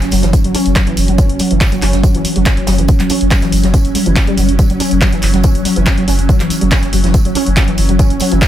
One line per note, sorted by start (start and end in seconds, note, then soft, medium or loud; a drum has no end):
0.00 0.11 F#1 medium
0.00 8.48 F#3 medium
0.00 8.48 C#4 medium
0.00 snare soft
0.00 closed hi-hat medium
0.11 0.22 F#1 loud
0.11 0.17 F#3 medium
0.11 open hi-hat loud
0.11 tambourine medium
0.22 0.33 F#1 medium
0.22 0.26 E3 medium
0.22 snare soft
0.22 closed hi-hat medium
0.33 kick loud
0.33 closed hi-hat medium
0.33 tambourine medium
0.44 0.54 F#1 medium
0.44 0.52 F#3 medium
0.44 closed hi-hat medium
0.55 0.60 C#4 loud
0.55 open hi-hat loud
0.55 tambourine medium
0.66 0.76 F#1 medium
0.66 closed hi-hat medium
0.75 0.81 F#3 medium
0.75 kick loud
0.75 snare loud
0.75 clap loud
0.75 closed hi-hat medium
0.75 tambourine medium
0.87 0.97 F#1 medium
0.87 0.90 E3 medium
0.87 closed hi-hat medium
0.97 1.08 F#1 loud
0.97 open hi-hat loud
0.97 tambourine medium
1.08 1.18 F#1 medium
1.08 1.16 F#3 medium
1.08 closed hi-hat medium
1.18 1.24 C#4 loud
1.18 kick loud
1.18 closed hi-hat medium
1.18 tambourine medium
1.29 1.40 F#1 medium
1.29 closed hi-hat medium
1.39 1.45 F#3 medium
1.39 open hi-hat loud
1.39 tambourine medium
1.51 1.61 F#1 medium
1.51 1.54 E3 medium
1.51 closed hi-hat medium
1.61 kick loud
1.61 snare loud
1.61 clap loud
1.61 closed hi-hat medium
1.61 tambourine medium
1.72 1.82 F#1 medium
1.72 1.80 F#3 medium
1.72 closed hi-hat medium
1.82 1.93 F#1 loud
1.82 1.88 C#4 loud
1.82 clap soft
1.82 open hi-hat loud
1.82 tambourine medium
1.93 2.03 F#1 medium
1.93 snare soft
1.93 closed hi-hat medium
2.03 2.09 F#3 medium
2.03 kick loud
2.03 closed hi-hat medium
2.03 tambourine medium
2.15 2.25 F#1 medium
2.15 2.18 E3 medium
2.15 closed hi-hat medium
2.25 open hi-hat loud
2.25 tambourine medium
2.36 2.46 F#1 medium
2.36 2.43 F#3 medium
2.36 closed hi-hat medium
2.46 2.51 C#4 loud
2.46 kick loud
2.46 snare loud
2.46 clap loud
2.46 closed hi-hat medium
2.46 tambourine medium
2.57 2.67 F#1 medium
2.57 closed hi-hat medium
2.67 2.78 F#1 loud
2.67 2.73 F#3 medium
2.67 snare loud
2.67 open hi-hat loud
2.67 tambourine medium
2.78 2.88 F#1 medium
2.78 2.81 E3 medium
2.78 closed hi-hat medium
2.88 kick loud
2.88 closed hi-hat medium
2.88 tambourine medium
3.00 3.10 F#1 medium
3.00 3.07 F#3 medium
3.00 clap soft
3.00 closed hi-hat medium
3.00 closed hi-hat soft
3.10 3.15 C#4 loud
3.10 open hi-hat loud
3.10 tambourine medium
3.21 3.31 F#1 medium
3.21 closed hi-hat medium
3.31 3.37 F#3 medium
3.31 kick loud
3.31 snare loud
3.31 clap loud
3.31 closed hi-hat medium
3.31 tambourine medium
3.42 3.52 F#1 medium
3.42 3.45 E3 medium
3.42 snare soft
3.42 closed hi-hat soft
3.52 3.63 F#1 loud
3.52 open hi-hat loud
3.52 tambourine medium
3.63 3.74 F#1 medium
3.63 3.71 F#3 medium
3.63 snare soft
3.63 closed hi-hat medium
3.74 3.79 C#4 loud
3.74 kick loud
3.74 closed hi-hat medium
3.74 tambourine medium
3.85 3.95 F#1 medium
3.85 closed hi-hat medium
3.95 3.98 G3 medium
3.95 open hi-hat loud
3.95 tambourine medium
4.06 4.16 F#1 medium
4.06 4.11 E3 loud
4.06 closed hi-hat soft
4.16 kick loud
4.16 snare loud
4.16 clap loud
4.16 closed hi-hat medium
4.16 tambourine medium
4.27 4.37 F#1 medium
4.27 4.32 G3 loud
4.27 closed hi-hat soft
4.38 4.48 F#1 loud
4.38 4.43 F#3 medium
4.38 open hi-hat loud
4.38 tambourine medium
4.49 4.59 F#1 medium
4.49 closed hi-hat soft
4.59 kick loud
4.59 closed hi-hat medium
4.59 tambourine loud
4.70 4.80 F#1 medium
4.70 4.77 F#3 medium
4.70 closed hi-hat soft
4.80 4.86 C#4 loud
4.80 open hi-hat loud
4.80 tambourine medium
4.91 5.01 F#1 medium
4.91 closed hi-hat medium
5.01 5.07 F#3 medium
5.01 kick loud
5.01 snare loud
5.01 clap loud
5.01 closed hi-hat medium
5.01 tambourine medium
5.12 5.22 F#1 medium
5.12 5.15 E3 medium
5.12 closed hi-hat medium
5.22 5.33 F#1 loud
5.22 clap soft
5.22 open hi-hat loud
5.22 tambourine medium
5.34 5.44 F#1 medium
5.34 5.41 F#3 medium
5.34 snare soft
5.34 closed hi-hat medium
5.43 5.49 C#4 loud
5.43 kick loud
5.43 closed hi-hat medium
5.43 tambourine medium
5.55 5.65 F#1 medium
5.55 closed hi-hat medium
5.65 5.71 F#3 medium
5.65 open hi-hat loud
5.65 tambourine medium
5.76 5.86 F#1 medium
5.76 5.79 E3 medium
5.76 closed hi-hat soft
5.86 kick loud
5.86 snare loud
5.86 clap loud
5.86 closed hi-hat medium
5.86 tambourine medium
5.97 6.07 F#1 medium
5.97 6.05 F#3 medium
5.97 closed hi-hat soft
6.08 6.18 F#1 loud
6.08 6.13 C#4 medium
6.08 open hi-hat loud
6.08 tambourine medium
6.19 6.29 F#1 medium
6.19 closed hi-hat soft
6.29 6.34 F#3 medium
6.29 kick loud
6.29 closed hi-hat medium
6.29 tambourine medium
6.40 6.50 F#1 medium
6.40 6.43 E3 medium
6.40 clap soft
6.40 closed hi-hat soft
6.40 closed hi-hat medium
6.50 open hi-hat loud
6.50 tambourine medium
6.61 6.71 F#1 medium
6.61 6.69 F#3 medium
6.61 closed hi-hat medium
6.71 6.77 C#4 loud
6.71 kick loud
6.71 snare loud
6.71 clap loud
6.71 closed hi-hat medium
6.71 tambourine medium
6.82 6.92 F#1 medium
6.82 snare soft
6.82 closed hi-hat medium
6.93 7.03 F#1 loud
6.93 6.98 F#3 medium
6.93 open hi-hat loud
6.93 tambourine medium
7.04 7.14 F#1 medium
7.04 7.07 E3 medium
7.04 snare soft
7.04 closed hi-hat soft
7.14 kick loud
7.14 closed hi-hat medium
7.14 tambourine loud
7.25 7.35 F#1 medium
7.25 7.33 F#3 medium
7.25 closed hi-hat soft
7.35 7.41 C#4 loud
7.35 open hi-hat loud
7.35 tambourine medium
7.46 7.56 F#1 medium
7.46 closed hi-hat soft
7.57 7.62 F#3 medium
7.57 kick loud
7.57 snare loud
7.57 clap loud
7.57 closed hi-hat medium
7.57 tambourine medium
7.68 7.77 F#1 medium
7.68 7.71 E3 medium
7.68 closed hi-hat soft
7.78 7.88 F#1 loud
7.78 open hi-hat loud
7.78 tambourine medium
7.89 7.99 F#1 medium
7.89 7.96 F#3 medium
7.89 closed hi-hat soft
7.99 8.05 C#4 loud
7.99 kick loud
7.99 closed hi-hat medium
7.99 tambourine medium
8.10 8.20 F#1 medium
8.10 closed hi-hat medium
8.20 8.26 F#3 medium
8.20 open hi-hat loud
8.20 tambourine medium
8.32 8.42 F#1 medium
8.32 8.35 E3 medium
8.32 closed hi-hat medium
8.41 kick loud
8.41 snare loud
8.41 clap loud
8.41 closed hi-hat medium
8.41 tambourine medium